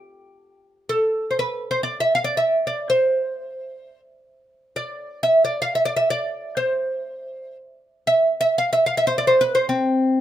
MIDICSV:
0, 0, Header, 1, 2, 480
1, 0, Start_track
1, 0, Tempo, 500000
1, 9798, End_track
2, 0, Start_track
2, 0, Title_t, "Oud"
2, 0, Program_c, 0, 24
2, 857, Note_on_c, 0, 69, 74
2, 1254, Note_on_c, 0, 72, 49
2, 1284, Note_off_c, 0, 69, 0
2, 1326, Note_off_c, 0, 72, 0
2, 1335, Note_on_c, 0, 71, 71
2, 1636, Note_off_c, 0, 71, 0
2, 1640, Note_on_c, 0, 72, 73
2, 1755, Note_off_c, 0, 72, 0
2, 1759, Note_on_c, 0, 74, 74
2, 1920, Note_off_c, 0, 74, 0
2, 1923, Note_on_c, 0, 76, 76
2, 2050, Note_off_c, 0, 76, 0
2, 2063, Note_on_c, 0, 77, 78
2, 2150, Note_off_c, 0, 77, 0
2, 2154, Note_on_c, 0, 74, 82
2, 2273, Note_off_c, 0, 74, 0
2, 2277, Note_on_c, 0, 76, 73
2, 2549, Note_off_c, 0, 76, 0
2, 2563, Note_on_c, 0, 74, 68
2, 2775, Note_off_c, 0, 74, 0
2, 2781, Note_on_c, 0, 72, 68
2, 3836, Note_off_c, 0, 72, 0
2, 4571, Note_on_c, 0, 74, 71
2, 5014, Note_off_c, 0, 74, 0
2, 5021, Note_on_c, 0, 76, 78
2, 5224, Note_off_c, 0, 76, 0
2, 5228, Note_on_c, 0, 74, 72
2, 5388, Note_off_c, 0, 74, 0
2, 5393, Note_on_c, 0, 77, 81
2, 5518, Note_off_c, 0, 77, 0
2, 5522, Note_on_c, 0, 76, 73
2, 5616, Note_off_c, 0, 76, 0
2, 5619, Note_on_c, 0, 74, 78
2, 5723, Note_off_c, 0, 74, 0
2, 5726, Note_on_c, 0, 76, 75
2, 5855, Note_off_c, 0, 76, 0
2, 5859, Note_on_c, 0, 74, 82
2, 6306, Note_on_c, 0, 72, 66
2, 6318, Note_off_c, 0, 74, 0
2, 7260, Note_off_c, 0, 72, 0
2, 7749, Note_on_c, 0, 76, 78
2, 8059, Note_off_c, 0, 76, 0
2, 8070, Note_on_c, 0, 76, 88
2, 8228, Note_off_c, 0, 76, 0
2, 8238, Note_on_c, 0, 77, 86
2, 8373, Note_off_c, 0, 77, 0
2, 8377, Note_on_c, 0, 76, 83
2, 8496, Note_off_c, 0, 76, 0
2, 8509, Note_on_c, 0, 77, 83
2, 8611, Note_off_c, 0, 77, 0
2, 8615, Note_on_c, 0, 76, 78
2, 8703, Note_off_c, 0, 76, 0
2, 8707, Note_on_c, 0, 72, 80
2, 8803, Note_off_c, 0, 72, 0
2, 8813, Note_on_c, 0, 74, 76
2, 8898, Note_off_c, 0, 74, 0
2, 8902, Note_on_c, 0, 72, 76
2, 9032, Note_on_c, 0, 71, 81
2, 9038, Note_off_c, 0, 72, 0
2, 9166, Note_on_c, 0, 72, 79
2, 9181, Note_off_c, 0, 71, 0
2, 9298, Note_off_c, 0, 72, 0
2, 9302, Note_on_c, 0, 60, 63
2, 9798, Note_off_c, 0, 60, 0
2, 9798, End_track
0, 0, End_of_file